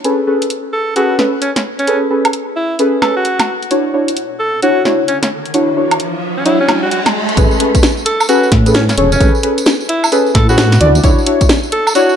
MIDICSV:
0, 0, Header, 1, 6, 480
1, 0, Start_track
1, 0, Key_signature, 3, "major"
1, 0, Tempo, 458015
1, 46, Time_signature, 4, 2, 24, 8
1, 12747, End_track
2, 0, Start_track
2, 0, Title_t, "Synth stab"
2, 0, Program_c, 0, 62
2, 45, Note_on_c, 0, 61, 84
2, 45, Note_on_c, 0, 68, 79
2, 45, Note_on_c, 0, 69, 75
2, 45, Note_on_c, 0, 71, 91
2, 225, Note_off_c, 0, 61, 0
2, 225, Note_off_c, 0, 68, 0
2, 225, Note_off_c, 0, 69, 0
2, 225, Note_off_c, 0, 71, 0
2, 285, Note_on_c, 0, 69, 67
2, 286, Note_on_c, 0, 61, 73
2, 286, Note_on_c, 0, 68, 64
2, 286, Note_on_c, 0, 71, 79
2, 465, Note_off_c, 0, 61, 0
2, 465, Note_off_c, 0, 68, 0
2, 465, Note_off_c, 0, 69, 0
2, 465, Note_off_c, 0, 71, 0
2, 1005, Note_on_c, 0, 61, 91
2, 1005, Note_on_c, 0, 68, 84
2, 1005, Note_on_c, 0, 69, 83
2, 1005, Note_on_c, 0, 71, 100
2, 1185, Note_off_c, 0, 61, 0
2, 1185, Note_off_c, 0, 68, 0
2, 1185, Note_off_c, 0, 69, 0
2, 1185, Note_off_c, 0, 71, 0
2, 1245, Note_on_c, 0, 61, 79
2, 1245, Note_on_c, 0, 69, 73
2, 1245, Note_on_c, 0, 71, 86
2, 1246, Note_on_c, 0, 68, 75
2, 1370, Note_off_c, 0, 61, 0
2, 1370, Note_off_c, 0, 68, 0
2, 1370, Note_off_c, 0, 69, 0
2, 1370, Note_off_c, 0, 71, 0
2, 1965, Note_on_c, 0, 61, 84
2, 1965, Note_on_c, 0, 68, 79
2, 1965, Note_on_c, 0, 69, 80
2, 1966, Note_on_c, 0, 71, 96
2, 2145, Note_off_c, 0, 61, 0
2, 2145, Note_off_c, 0, 68, 0
2, 2145, Note_off_c, 0, 69, 0
2, 2145, Note_off_c, 0, 71, 0
2, 2206, Note_on_c, 0, 61, 73
2, 2206, Note_on_c, 0, 68, 66
2, 2206, Note_on_c, 0, 69, 68
2, 2207, Note_on_c, 0, 71, 81
2, 2385, Note_off_c, 0, 61, 0
2, 2386, Note_off_c, 0, 68, 0
2, 2386, Note_off_c, 0, 69, 0
2, 2386, Note_off_c, 0, 71, 0
2, 2926, Note_on_c, 0, 61, 90
2, 2926, Note_on_c, 0, 71, 101
2, 2927, Note_on_c, 0, 68, 83
2, 2927, Note_on_c, 0, 69, 81
2, 3105, Note_off_c, 0, 61, 0
2, 3105, Note_off_c, 0, 71, 0
2, 3106, Note_off_c, 0, 68, 0
2, 3106, Note_off_c, 0, 69, 0
2, 3167, Note_on_c, 0, 61, 82
2, 3167, Note_on_c, 0, 68, 75
2, 3167, Note_on_c, 0, 69, 78
2, 3167, Note_on_c, 0, 71, 93
2, 3291, Note_off_c, 0, 61, 0
2, 3291, Note_off_c, 0, 68, 0
2, 3291, Note_off_c, 0, 69, 0
2, 3291, Note_off_c, 0, 71, 0
2, 3887, Note_on_c, 0, 62, 89
2, 3887, Note_on_c, 0, 64, 80
2, 3887, Note_on_c, 0, 66, 78
2, 3887, Note_on_c, 0, 73, 91
2, 4066, Note_off_c, 0, 62, 0
2, 4066, Note_off_c, 0, 64, 0
2, 4066, Note_off_c, 0, 66, 0
2, 4066, Note_off_c, 0, 73, 0
2, 4126, Note_on_c, 0, 62, 71
2, 4126, Note_on_c, 0, 64, 68
2, 4126, Note_on_c, 0, 66, 64
2, 4126, Note_on_c, 0, 73, 77
2, 4305, Note_off_c, 0, 62, 0
2, 4305, Note_off_c, 0, 64, 0
2, 4305, Note_off_c, 0, 66, 0
2, 4305, Note_off_c, 0, 73, 0
2, 4847, Note_on_c, 0, 62, 92
2, 4847, Note_on_c, 0, 73, 101
2, 4848, Note_on_c, 0, 64, 81
2, 4848, Note_on_c, 0, 66, 82
2, 5026, Note_off_c, 0, 62, 0
2, 5026, Note_off_c, 0, 64, 0
2, 5026, Note_off_c, 0, 66, 0
2, 5026, Note_off_c, 0, 73, 0
2, 5086, Note_on_c, 0, 62, 82
2, 5086, Note_on_c, 0, 64, 78
2, 5086, Note_on_c, 0, 73, 91
2, 5087, Note_on_c, 0, 66, 74
2, 5211, Note_off_c, 0, 62, 0
2, 5211, Note_off_c, 0, 64, 0
2, 5211, Note_off_c, 0, 66, 0
2, 5211, Note_off_c, 0, 73, 0
2, 5806, Note_on_c, 0, 62, 87
2, 5806, Note_on_c, 0, 64, 80
2, 5806, Note_on_c, 0, 73, 95
2, 5807, Note_on_c, 0, 66, 80
2, 5985, Note_off_c, 0, 62, 0
2, 5985, Note_off_c, 0, 64, 0
2, 5985, Note_off_c, 0, 73, 0
2, 5986, Note_off_c, 0, 66, 0
2, 6047, Note_on_c, 0, 62, 73
2, 6047, Note_on_c, 0, 64, 66
2, 6047, Note_on_c, 0, 66, 65
2, 6047, Note_on_c, 0, 73, 81
2, 6226, Note_off_c, 0, 62, 0
2, 6226, Note_off_c, 0, 64, 0
2, 6226, Note_off_c, 0, 66, 0
2, 6226, Note_off_c, 0, 73, 0
2, 6766, Note_on_c, 0, 62, 91
2, 6766, Note_on_c, 0, 64, 83
2, 6766, Note_on_c, 0, 66, 83
2, 6766, Note_on_c, 0, 73, 101
2, 6945, Note_off_c, 0, 64, 0
2, 6945, Note_off_c, 0, 66, 0
2, 6945, Note_off_c, 0, 73, 0
2, 6946, Note_off_c, 0, 62, 0
2, 7006, Note_on_c, 0, 62, 82
2, 7006, Note_on_c, 0, 66, 75
2, 7006, Note_on_c, 0, 73, 90
2, 7007, Note_on_c, 0, 64, 75
2, 7131, Note_off_c, 0, 62, 0
2, 7131, Note_off_c, 0, 64, 0
2, 7131, Note_off_c, 0, 66, 0
2, 7131, Note_off_c, 0, 73, 0
2, 7725, Note_on_c, 0, 61, 87
2, 7725, Note_on_c, 0, 68, 81
2, 7725, Note_on_c, 0, 69, 82
2, 7725, Note_on_c, 0, 71, 102
2, 7905, Note_off_c, 0, 61, 0
2, 7905, Note_off_c, 0, 68, 0
2, 7905, Note_off_c, 0, 69, 0
2, 7905, Note_off_c, 0, 71, 0
2, 7965, Note_on_c, 0, 61, 73
2, 7965, Note_on_c, 0, 68, 67
2, 7965, Note_on_c, 0, 69, 68
2, 7965, Note_on_c, 0, 71, 84
2, 8145, Note_off_c, 0, 61, 0
2, 8145, Note_off_c, 0, 68, 0
2, 8145, Note_off_c, 0, 69, 0
2, 8145, Note_off_c, 0, 71, 0
2, 8685, Note_on_c, 0, 61, 99
2, 8685, Note_on_c, 0, 68, 86
2, 8685, Note_on_c, 0, 69, 82
2, 8685, Note_on_c, 0, 71, 107
2, 8865, Note_off_c, 0, 61, 0
2, 8865, Note_off_c, 0, 68, 0
2, 8865, Note_off_c, 0, 69, 0
2, 8865, Note_off_c, 0, 71, 0
2, 9078, Note_on_c, 0, 69, 71
2, 9079, Note_on_c, 0, 61, 81
2, 9079, Note_on_c, 0, 68, 74
2, 9079, Note_on_c, 0, 71, 87
2, 9150, Note_off_c, 0, 61, 0
2, 9150, Note_off_c, 0, 68, 0
2, 9150, Note_off_c, 0, 69, 0
2, 9150, Note_off_c, 0, 71, 0
2, 9406, Note_on_c, 0, 61, 91
2, 9406, Note_on_c, 0, 68, 83
2, 9406, Note_on_c, 0, 73, 98
2, 9407, Note_on_c, 0, 69, 85
2, 9531, Note_off_c, 0, 61, 0
2, 9531, Note_off_c, 0, 68, 0
2, 9531, Note_off_c, 0, 69, 0
2, 9531, Note_off_c, 0, 73, 0
2, 9645, Note_on_c, 0, 61, 91
2, 9645, Note_on_c, 0, 68, 82
2, 9645, Note_on_c, 0, 69, 84
2, 9645, Note_on_c, 0, 71, 101
2, 9825, Note_off_c, 0, 61, 0
2, 9825, Note_off_c, 0, 68, 0
2, 9825, Note_off_c, 0, 69, 0
2, 9825, Note_off_c, 0, 71, 0
2, 9885, Note_on_c, 0, 61, 79
2, 9885, Note_on_c, 0, 68, 69
2, 9885, Note_on_c, 0, 71, 84
2, 9886, Note_on_c, 0, 69, 68
2, 10065, Note_off_c, 0, 61, 0
2, 10065, Note_off_c, 0, 68, 0
2, 10065, Note_off_c, 0, 69, 0
2, 10065, Note_off_c, 0, 71, 0
2, 10605, Note_on_c, 0, 61, 99
2, 10605, Note_on_c, 0, 68, 88
2, 10605, Note_on_c, 0, 71, 102
2, 10606, Note_on_c, 0, 69, 88
2, 10785, Note_off_c, 0, 61, 0
2, 10785, Note_off_c, 0, 68, 0
2, 10785, Note_off_c, 0, 69, 0
2, 10785, Note_off_c, 0, 71, 0
2, 10997, Note_on_c, 0, 68, 75
2, 10997, Note_on_c, 0, 71, 89
2, 10998, Note_on_c, 0, 61, 81
2, 10998, Note_on_c, 0, 69, 74
2, 11069, Note_off_c, 0, 68, 0
2, 11069, Note_off_c, 0, 71, 0
2, 11070, Note_off_c, 0, 61, 0
2, 11070, Note_off_c, 0, 69, 0
2, 11324, Note_on_c, 0, 74, 98
2, 11325, Note_on_c, 0, 62, 93
2, 11325, Note_on_c, 0, 66, 85
2, 11326, Note_on_c, 0, 64, 80
2, 11450, Note_off_c, 0, 62, 0
2, 11450, Note_off_c, 0, 64, 0
2, 11450, Note_off_c, 0, 66, 0
2, 11450, Note_off_c, 0, 74, 0
2, 11565, Note_on_c, 0, 62, 90
2, 11565, Note_on_c, 0, 64, 82
2, 11565, Note_on_c, 0, 66, 82
2, 11565, Note_on_c, 0, 73, 99
2, 11745, Note_off_c, 0, 62, 0
2, 11745, Note_off_c, 0, 64, 0
2, 11745, Note_off_c, 0, 66, 0
2, 11745, Note_off_c, 0, 73, 0
2, 11805, Note_on_c, 0, 64, 70
2, 11805, Note_on_c, 0, 66, 71
2, 11806, Note_on_c, 0, 62, 75
2, 11806, Note_on_c, 0, 73, 86
2, 11985, Note_off_c, 0, 62, 0
2, 11985, Note_off_c, 0, 64, 0
2, 11985, Note_off_c, 0, 66, 0
2, 11985, Note_off_c, 0, 73, 0
2, 12525, Note_on_c, 0, 62, 98
2, 12525, Note_on_c, 0, 64, 91
2, 12525, Note_on_c, 0, 66, 86
2, 12525, Note_on_c, 0, 73, 102
2, 12705, Note_off_c, 0, 62, 0
2, 12705, Note_off_c, 0, 64, 0
2, 12705, Note_off_c, 0, 66, 0
2, 12705, Note_off_c, 0, 73, 0
2, 12747, End_track
3, 0, Start_track
3, 0, Title_t, "Alto saxophone"
3, 0, Program_c, 1, 65
3, 765, Note_on_c, 1, 69, 85
3, 984, Note_off_c, 1, 69, 0
3, 1005, Note_on_c, 1, 66, 86
3, 1224, Note_off_c, 1, 66, 0
3, 1485, Note_on_c, 1, 61, 81
3, 1583, Note_off_c, 1, 61, 0
3, 1635, Note_on_c, 1, 61, 72
3, 1693, Note_off_c, 1, 61, 0
3, 1877, Note_on_c, 1, 61, 91
3, 2080, Note_off_c, 1, 61, 0
3, 2686, Note_on_c, 1, 64, 84
3, 2905, Note_off_c, 1, 64, 0
3, 3166, Note_on_c, 1, 69, 86
3, 3289, Note_off_c, 1, 69, 0
3, 3318, Note_on_c, 1, 66, 90
3, 3707, Note_off_c, 1, 66, 0
3, 4606, Note_on_c, 1, 69, 87
3, 4825, Note_off_c, 1, 69, 0
3, 4848, Note_on_c, 1, 66, 88
3, 5066, Note_off_c, 1, 66, 0
3, 5327, Note_on_c, 1, 61, 82
3, 5424, Note_off_c, 1, 61, 0
3, 5480, Note_on_c, 1, 61, 73
3, 5536, Note_off_c, 1, 61, 0
3, 6678, Note_on_c, 1, 61, 78
3, 6748, Note_off_c, 1, 61, 0
3, 6766, Note_on_c, 1, 64, 86
3, 6888, Note_off_c, 1, 64, 0
3, 6919, Note_on_c, 1, 61, 85
3, 7121, Note_off_c, 1, 61, 0
3, 7157, Note_on_c, 1, 66, 84
3, 7214, Note_off_c, 1, 66, 0
3, 7244, Note_on_c, 1, 66, 75
3, 7343, Note_off_c, 1, 66, 0
3, 8446, Note_on_c, 1, 69, 94
3, 8665, Note_off_c, 1, 69, 0
3, 8687, Note_on_c, 1, 66, 93
3, 8905, Note_off_c, 1, 66, 0
3, 9165, Note_on_c, 1, 61, 91
3, 9263, Note_off_c, 1, 61, 0
3, 9318, Note_on_c, 1, 61, 76
3, 9374, Note_off_c, 1, 61, 0
3, 9559, Note_on_c, 1, 61, 94
3, 9761, Note_off_c, 1, 61, 0
3, 10367, Note_on_c, 1, 64, 92
3, 10585, Note_off_c, 1, 64, 0
3, 10846, Note_on_c, 1, 69, 91
3, 10968, Note_off_c, 1, 69, 0
3, 10997, Note_on_c, 1, 66, 99
3, 11386, Note_off_c, 1, 66, 0
3, 12287, Note_on_c, 1, 69, 94
3, 12505, Note_off_c, 1, 69, 0
3, 12525, Note_on_c, 1, 66, 94
3, 12744, Note_off_c, 1, 66, 0
3, 12747, End_track
4, 0, Start_track
4, 0, Title_t, "Wobble bass"
4, 0, Program_c, 2, 39
4, 7726, Note_on_c, 2, 33, 98
4, 7844, Note_off_c, 2, 33, 0
4, 8927, Note_on_c, 2, 45, 106
4, 9375, Note_off_c, 2, 45, 0
4, 9407, Note_on_c, 2, 28, 100
4, 9607, Note_off_c, 2, 28, 0
4, 9647, Note_on_c, 2, 33, 102
4, 9765, Note_off_c, 2, 33, 0
4, 10847, Note_on_c, 2, 45, 103
4, 11295, Note_off_c, 2, 45, 0
4, 11326, Note_on_c, 2, 38, 99
4, 11527, Note_off_c, 2, 38, 0
4, 11567, Note_on_c, 2, 38, 99
4, 11685, Note_off_c, 2, 38, 0
4, 12747, End_track
5, 0, Start_track
5, 0, Title_t, "Riser"
5, 0, Program_c, 3, 103
5, 3887, Note_on_c, 3, 60, 73
5, 7727, Note_off_c, 3, 60, 0
5, 12747, End_track
6, 0, Start_track
6, 0, Title_t, "Drums"
6, 47, Note_on_c, 9, 42, 60
6, 152, Note_off_c, 9, 42, 0
6, 439, Note_on_c, 9, 42, 60
6, 526, Note_off_c, 9, 42, 0
6, 526, Note_on_c, 9, 42, 64
6, 631, Note_off_c, 9, 42, 0
6, 1006, Note_on_c, 9, 42, 58
6, 1111, Note_off_c, 9, 42, 0
6, 1245, Note_on_c, 9, 40, 53
6, 1350, Note_off_c, 9, 40, 0
6, 1485, Note_on_c, 9, 42, 62
6, 1590, Note_off_c, 9, 42, 0
6, 1638, Note_on_c, 9, 40, 61
6, 1638, Note_on_c, 9, 42, 61
6, 1743, Note_off_c, 9, 40, 0
6, 1743, Note_off_c, 9, 42, 0
6, 1877, Note_on_c, 9, 42, 34
6, 1965, Note_off_c, 9, 42, 0
6, 1965, Note_on_c, 9, 42, 64
6, 2069, Note_off_c, 9, 42, 0
6, 2358, Note_on_c, 9, 42, 62
6, 2358, Note_on_c, 9, 76, 76
6, 2445, Note_off_c, 9, 42, 0
6, 2445, Note_on_c, 9, 42, 67
6, 2462, Note_off_c, 9, 76, 0
6, 2550, Note_off_c, 9, 42, 0
6, 2925, Note_on_c, 9, 42, 61
6, 3030, Note_off_c, 9, 42, 0
6, 3166, Note_on_c, 9, 40, 52
6, 3166, Note_on_c, 9, 76, 82
6, 3270, Note_off_c, 9, 40, 0
6, 3270, Note_off_c, 9, 76, 0
6, 3405, Note_on_c, 9, 42, 64
6, 3510, Note_off_c, 9, 42, 0
6, 3558, Note_on_c, 9, 40, 58
6, 3558, Note_on_c, 9, 42, 62
6, 3558, Note_on_c, 9, 76, 78
6, 3663, Note_off_c, 9, 40, 0
6, 3663, Note_off_c, 9, 42, 0
6, 3663, Note_off_c, 9, 76, 0
6, 3799, Note_on_c, 9, 42, 34
6, 3886, Note_off_c, 9, 42, 0
6, 3886, Note_on_c, 9, 42, 65
6, 3991, Note_off_c, 9, 42, 0
6, 4279, Note_on_c, 9, 42, 67
6, 4366, Note_off_c, 9, 42, 0
6, 4366, Note_on_c, 9, 42, 66
6, 4471, Note_off_c, 9, 42, 0
6, 4847, Note_on_c, 9, 42, 59
6, 4951, Note_off_c, 9, 42, 0
6, 5087, Note_on_c, 9, 40, 54
6, 5191, Note_off_c, 9, 40, 0
6, 5326, Note_on_c, 9, 42, 63
6, 5430, Note_off_c, 9, 42, 0
6, 5478, Note_on_c, 9, 40, 58
6, 5478, Note_on_c, 9, 42, 66
6, 5583, Note_off_c, 9, 40, 0
6, 5583, Note_off_c, 9, 42, 0
6, 5717, Note_on_c, 9, 42, 36
6, 5806, Note_off_c, 9, 42, 0
6, 5806, Note_on_c, 9, 42, 65
6, 5911, Note_off_c, 9, 42, 0
6, 6198, Note_on_c, 9, 42, 64
6, 6198, Note_on_c, 9, 76, 70
6, 6286, Note_off_c, 9, 42, 0
6, 6286, Note_on_c, 9, 42, 63
6, 6303, Note_off_c, 9, 76, 0
6, 6390, Note_off_c, 9, 42, 0
6, 6766, Note_on_c, 9, 42, 61
6, 6871, Note_off_c, 9, 42, 0
6, 7006, Note_on_c, 9, 40, 53
6, 7006, Note_on_c, 9, 76, 78
6, 7111, Note_off_c, 9, 40, 0
6, 7111, Note_off_c, 9, 76, 0
6, 7246, Note_on_c, 9, 42, 67
6, 7351, Note_off_c, 9, 42, 0
6, 7399, Note_on_c, 9, 40, 62
6, 7399, Note_on_c, 9, 42, 64
6, 7399, Note_on_c, 9, 76, 72
6, 7504, Note_off_c, 9, 40, 0
6, 7504, Note_off_c, 9, 42, 0
6, 7504, Note_off_c, 9, 76, 0
6, 7639, Note_on_c, 9, 42, 35
6, 7726, Note_off_c, 9, 42, 0
6, 7726, Note_on_c, 9, 36, 120
6, 7726, Note_on_c, 9, 42, 68
6, 7732, Note_on_c, 9, 54, 65
6, 7830, Note_off_c, 9, 42, 0
6, 7831, Note_off_c, 9, 36, 0
6, 7837, Note_off_c, 9, 54, 0
6, 7872, Note_on_c, 9, 54, 43
6, 7966, Note_on_c, 9, 42, 116
6, 7977, Note_off_c, 9, 54, 0
6, 8071, Note_off_c, 9, 42, 0
6, 8119, Note_on_c, 9, 36, 113
6, 8119, Note_on_c, 9, 42, 67
6, 8126, Note_on_c, 9, 54, 73
6, 8206, Note_off_c, 9, 42, 0
6, 8206, Note_on_c, 9, 38, 118
6, 8206, Note_on_c, 9, 42, 68
6, 8211, Note_off_c, 9, 54, 0
6, 8211, Note_on_c, 9, 54, 68
6, 8224, Note_off_c, 9, 36, 0
6, 8311, Note_off_c, 9, 38, 0
6, 8311, Note_off_c, 9, 42, 0
6, 8315, Note_off_c, 9, 54, 0
6, 8354, Note_on_c, 9, 54, 36
6, 8446, Note_on_c, 9, 42, 115
6, 8459, Note_off_c, 9, 54, 0
6, 8551, Note_off_c, 9, 42, 0
6, 8597, Note_on_c, 9, 54, 77
6, 8598, Note_on_c, 9, 76, 59
6, 8686, Note_off_c, 9, 54, 0
6, 8686, Note_on_c, 9, 42, 64
6, 8686, Note_on_c, 9, 54, 63
6, 8703, Note_off_c, 9, 76, 0
6, 8791, Note_off_c, 9, 42, 0
6, 8791, Note_off_c, 9, 54, 0
6, 8838, Note_on_c, 9, 54, 37
6, 8926, Note_on_c, 9, 36, 111
6, 8926, Note_on_c, 9, 40, 62
6, 8926, Note_on_c, 9, 42, 115
6, 8943, Note_off_c, 9, 54, 0
6, 9031, Note_off_c, 9, 36, 0
6, 9031, Note_off_c, 9, 40, 0
6, 9031, Note_off_c, 9, 42, 0
6, 9077, Note_on_c, 9, 54, 73
6, 9079, Note_on_c, 9, 42, 66
6, 9161, Note_off_c, 9, 54, 0
6, 9161, Note_on_c, 9, 54, 66
6, 9166, Note_off_c, 9, 42, 0
6, 9166, Note_on_c, 9, 38, 121
6, 9166, Note_on_c, 9, 42, 64
6, 9266, Note_off_c, 9, 54, 0
6, 9271, Note_off_c, 9, 38, 0
6, 9271, Note_off_c, 9, 42, 0
6, 9319, Note_on_c, 9, 40, 71
6, 9319, Note_on_c, 9, 42, 63
6, 9319, Note_on_c, 9, 54, 43
6, 9406, Note_off_c, 9, 42, 0
6, 9406, Note_on_c, 9, 42, 110
6, 9424, Note_off_c, 9, 40, 0
6, 9424, Note_off_c, 9, 54, 0
6, 9511, Note_off_c, 9, 42, 0
6, 9557, Note_on_c, 9, 54, 72
6, 9560, Note_on_c, 9, 42, 35
6, 9646, Note_on_c, 9, 36, 124
6, 9647, Note_off_c, 9, 42, 0
6, 9647, Note_on_c, 9, 42, 64
6, 9652, Note_off_c, 9, 54, 0
6, 9652, Note_on_c, 9, 54, 67
6, 9751, Note_off_c, 9, 36, 0
6, 9752, Note_off_c, 9, 42, 0
6, 9757, Note_off_c, 9, 54, 0
6, 9797, Note_on_c, 9, 54, 43
6, 9887, Note_on_c, 9, 42, 112
6, 9902, Note_off_c, 9, 54, 0
6, 9992, Note_off_c, 9, 42, 0
6, 10037, Note_on_c, 9, 54, 72
6, 10040, Note_on_c, 9, 42, 62
6, 10121, Note_off_c, 9, 54, 0
6, 10121, Note_on_c, 9, 54, 67
6, 10127, Note_off_c, 9, 42, 0
6, 10127, Note_on_c, 9, 38, 127
6, 10127, Note_on_c, 9, 42, 66
6, 10226, Note_off_c, 9, 54, 0
6, 10232, Note_off_c, 9, 38, 0
6, 10232, Note_off_c, 9, 42, 0
6, 10276, Note_on_c, 9, 54, 42
6, 10366, Note_on_c, 9, 42, 106
6, 10380, Note_off_c, 9, 54, 0
6, 10471, Note_off_c, 9, 42, 0
6, 10519, Note_on_c, 9, 54, 80
6, 10519, Note_on_c, 9, 76, 62
6, 10606, Note_on_c, 9, 42, 63
6, 10608, Note_off_c, 9, 54, 0
6, 10608, Note_on_c, 9, 54, 69
6, 10624, Note_off_c, 9, 76, 0
6, 10711, Note_off_c, 9, 42, 0
6, 10713, Note_off_c, 9, 54, 0
6, 10756, Note_on_c, 9, 54, 35
6, 10846, Note_on_c, 9, 36, 111
6, 10846, Note_on_c, 9, 40, 59
6, 10846, Note_on_c, 9, 42, 110
6, 10861, Note_off_c, 9, 54, 0
6, 10950, Note_off_c, 9, 40, 0
6, 10950, Note_off_c, 9, 42, 0
6, 10951, Note_off_c, 9, 36, 0
6, 10994, Note_on_c, 9, 54, 79
6, 11083, Note_off_c, 9, 54, 0
6, 11083, Note_on_c, 9, 54, 69
6, 11086, Note_on_c, 9, 38, 125
6, 11086, Note_on_c, 9, 42, 65
6, 11188, Note_off_c, 9, 54, 0
6, 11191, Note_off_c, 9, 38, 0
6, 11191, Note_off_c, 9, 42, 0
6, 11238, Note_on_c, 9, 40, 69
6, 11238, Note_on_c, 9, 42, 63
6, 11243, Note_on_c, 9, 54, 43
6, 11325, Note_off_c, 9, 42, 0
6, 11325, Note_on_c, 9, 42, 109
6, 11343, Note_off_c, 9, 40, 0
6, 11347, Note_off_c, 9, 54, 0
6, 11430, Note_off_c, 9, 42, 0
6, 11477, Note_on_c, 9, 42, 34
6, 11478, Note_on_c, 9, 54, 74
6, 11565, Note_off_c, 9, 42, 0
6, 11565, Note_on_c, 9, 42, 63
6, 11567, Note_on_c, 9, 36, 123
6, 11569, Note_off_c, 9, 54, 0
6, 11569, Note_on_c, 9, 54, 70
6, 11670, Note_off_c, 9, 42, 0
6, 11671, Note_off_c, 9, 36, 0
6, 11674, Note_off_c, 9, 54, 0
6, 11722, Note_on_c, 9, 54, 40
6, 11806, Note_on_c, 9, 42, 108
6, 11826, Note_off_c, 9, 54, 0
6, 11911, Note_off_c, 9, 42, 0
6, 11955, Note_on_c, 9, 54, 82
6, 11958, Note_on_c, 9, 42, 62
6, 11959, Note_on_c, 9, 36, 115
6, 12041, Note_off_c, 9, 54, 0
6, 12041, Note_on_c, 9, 54, 72
6, 12046, Note_off_c, 9, 42, 0
6, 12046, Note_on_c, 9, 38, 127
6, 12046, Note_on_c, 9, 42, 65
6, 12064, Note_off_c, 9, 36, 0
6, 12146, Note_off_c, 9, 54, 0
6, 12151, Note_off_c, 9, 38, 0
6, 12151, Note_off_c, 9, 42, 0
6, 12193, Note_on_c, 9, 54, 43
6, 12284, Note_on_c, 9, 42, 101
6, 12298, Note_off_c, 9, 54, 0
6, 12389, Note_off_c, 9, 42, 0
6, 12438, Note_on_c, 9, 76, 59
6, 12441, Note_on_c, 9, 54, 81
6, 12525, Note_on_c, 9, 42, 59
6, 12526, Note_off_c, 9, 54, 0
6, 12526, Note_on_c, 9, 54, 73
6, 12543, Note_off_c, 9, 76, 0
6, 12630, Note_off_c, 9, 42, 0
6, 12631, Note_off_c, 9, 54, 0
6, 12672, Note_on_c, 9, 54, 39
6, 12747, Note_off_c, 9, 54, 0
6, 12747, End_track
0, 0, End_of_file